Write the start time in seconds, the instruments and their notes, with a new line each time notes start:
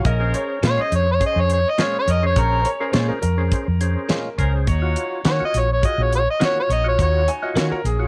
0.05 fingered electric bass A#1, horn section C#4 G#4 A#4, upright piano D#5, kick, closed hi-hat
0.20 tonewheel organ C#4 G#4 C5
0.34 upright piano C#5, closed hi-hat
0.63 fingered electric bass A#2, clean electric guitar A#2 G#3 C#4 F4, harmonica C#5, snare, closed hi-hat
0.77 tonewheel organ C#4 G#4 C5, muted fingered electric bass stroke
0.81 harmonica D#5
0.92 fingered electric bass F2, harmonica C#5, closed hi-hat
1.11 harmonica C#5
1.20 tonewheel organ C#4 G#4 C5, kick, closed hi-hat
1.26 harmonica D#5
1.36 fingered electric bass F2
1.40 harmonica C#5
1.50 harmonica C#5, closed hi-hat
1.70 harmonica D#5
1.78 clean electric guitar A#2 G#3 C#4 F4, tonewheel organ C#4 G#4 C5, snare, closed hi-hat
1.83 harmonica C#5
1.99 harmonica C#5
2.06 fingered electric bass F2, horn section C#4 G#4 A#4, closed hi-hat
2.11 harmonica D#5
2.22 tonewheel organ C#4 G#4 C5, harmonica C#5
2.36 fingered electric bass A#1, horn section C#4 G#4 C#5, kick, closed hi-hat
2.40 harmonica A#4
2.61 upright piano C5, closed hi-hat
2.65 upright piano C#5
2.80 tonewheel organ C#4 G#4 C5, upright piano A#4
2.89 upright piano C5
2.93 clean electric guitar A#2 G#3 C#4 F4, fingered electric bass A#2, upright piano C#5, snare, closed hi-hat
3.08 upright piano A#4, muted fingered electric bass stroke
3.22 fingered electric bass F2, upright piano A#4, closed hi-hat
3.38 tonewheel organ C#4 G#4 C5
3.52 kick, closed hi-hat
3.68 fingered electric bass F2
3.81 tonewheel organ C#4 G#4 C5, closed hi-hat
4.09 clean electric guitar A#2 G#3 C#4 F4, snare, closed hi-hat
4.38 fingered electric bass C#2, tonewheel organ C#4 G#4 C5, horn section C#4 G#4 A#4, kick, closed hi-hat
4.67 fingered electric bass D#2, horn section F#3 D#4 C#5, kick, closed hi-hat
4.82 tonewheel organ F4 F#4 C#5
4.96 closed hi-hat
5.25 clean electric guitar D#3 A#3 C#4 F#4, fingered electric bass D#3, harmonica C#5, snare, closed hi-hat
5.40 tonewheel organ F4 F#4 C#5, muted fingered electric bass stroke
5.45 harmonica D#5
5.54 fingered electric bass A#1, closed hi-hat
5.58 harmonica C#5
5.73 harmonica C#5
5.82 tonewheel organ F4 F#4 G#4, harmonica D#5, kick, closed hi-hat
5.98 fingered electric bass A#1
6.02 harmonica C#5
6.13 harmonica C#5, closed hi-hat
6.30 harmonica D#5
6.39 clean electric guitar D#3 A#3 C#4 F#4, tonewheel organ F4 F#4 C#5, snare, closed hi-hat
6.45 harmonica C#5
6.60 harmonica C#5
6.69 fingered electric bass A#1, horn section D#4 F#4 C#5, harmonica D#5, closed hi-hat
6.84 tonewheel organ F4 F#4 C#5
6.88 harmonica C#5
6.98 fingered electric bass D#2, horn section D#4 F#4 C#5, harmonica C#5, kick, closed hi-hat
7.28 upright piano G#5, closed hi-hat
7.42 tonewheel organ F4 F#4 C#5, upright piano D#5
7.56 fingered electric bass D#3, clean electric guitar D#3 A#3 C#4 F#4, upright piano C#5, snare, closed hi-hat
7.72 upright piano A#4, muted fingered electric bass stroke
7.84 fingered electric bass A#1, upright piano G#4, closed hi-hat
7.99 tonewheel organ F4 F#4 C#5